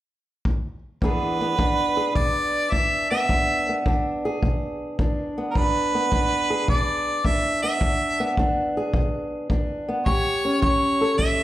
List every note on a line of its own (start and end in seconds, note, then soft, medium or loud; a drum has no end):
0.45 kick medium
1.02 1.55 E2 medium
1.02 1.58 E3 medium
1.02 1.41 B3 medium
1.02 1.59 D4 medium
1.02 1.97 G#4 medium
1.02 2.12 B4 medium
1.02 kick medium
1.41 3.11 B3 medium
1.59 2.12 E3 medium
1.59 2.72 D4 medium
1.59 kick medium
1.97 3.33 G#4 medium
2.15 2.68 B2 medium
2.15 2.72 D5 medium
2.15 kick medium
2.71 3.25 E3 medium
2.71 3.29 D4 medium
2.71 3.10 E5 loud
2.71 kick medium
3.10 3.69 B3 medium
3.10 3.82 E5 loud
3.29 3.82 E2 medium
3.29 3.87 D4 medium
3.29 kick medium
3.69 5.37 B3 medium
3.86 4.39 E3 medium
3.86 5.00 D4 medium
3.86 kick medium
4.25 5.60 G#4 medium
4.43 4.95 B2 medium
4.43 kick medium
4.99 5.52 E3 medium
4.99 5.57 D4 medium
4.99 kick medium
5.38 5.94 B3 medium
5.51 5.59 A#4 medium
5.55 6.08 E2 medium
5.55 6.13 D4 medium
5.55 6.69 B4 medium
5.55 kick medium
5.95 7.62 B3 medium
6.12 6.65 E3 medium
6.12 7.24 D4 medium
6.12 kick medium
6.50 7.79 G#4 medium
6.68 7.21 B2 medium
6.68 7.27 D5 medium
6.68 kick medium
7.25 7.78 E3 medium
7.25 7.79 D4 medium
7.25 7.62 E5 loud
7.25 kick medium
7.62 7.79 B3 medium
7.62 8.33 E5 medium
7.81 8.34 E2 medium
7.81 8.38 D4 medium
7.81 kick medium
8.20 9.87 B3 medium
8.37 8.91 E3 medium
8.37 9.50 D4 medium
8.37 kick medium
8.77 10.05 G#4 medium
8.94 9.47 B2 medium
8.94 kick medium
9.50 10.03 E3 medium
9.50 10.05 D4 medium
9.50 kick medium
9.88 10.05 B3 medium
10.06 10.60 A2 medium
10.06 10.62 G4 medium
10.06 10.59 C#5 medium
10.06 kick medium
10.45 11.43 C#4 medium
10.62 11.15 E3 medium
10.62 11.43 G4 medium
10.62 11.15 C#5 medium
10.62 kick medium
11.01 11.43 A4 medium
11.17 11.43 E3 medium
11.17 11.43 E5 loud
11.17 kick medium